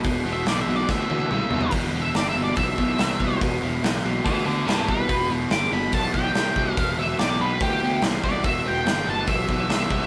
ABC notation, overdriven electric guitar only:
X:1
M:4/4
L:1/8
Q:1/4=143
K:Em
V:1 name="Overdriven electric guitar" clef=bass
[E,,B,,] [E,,B,,] [E,,^C,] [E,,B,,] [E,,B,,] [E,,B,,] [E,,C,] [E,,B,,] | [E,,B,,] [E,,B,,] [E,,^C,] [E,,B,,] [E,,B,,] [E,,B,,] [E,,C,] [E,,B,,] | [E,,B,,] [E,,B,,] [E,,^C,] [E,,B,,] [E,,B,,] [E,,B,,] [E,,C,] [E,,B,,] | [E,,B,,] [E,,B,,] [E,,^C,] [E,,B,,] [E,,B,,] [E,,B,,] [E,,C,] [E,,B,,] |
[E,,B,,] [E,,B,,] [E,,^C,] [E,,B,,] [E,,B,,] [E,,B,,] [E,,C,] [E,,B,,] | [E,,B,,] [E,,B,,] [E,,^C,] [E,,B,,] [E,,B,,] [E,,B,,] [E,,C,] [E,,B,,] |]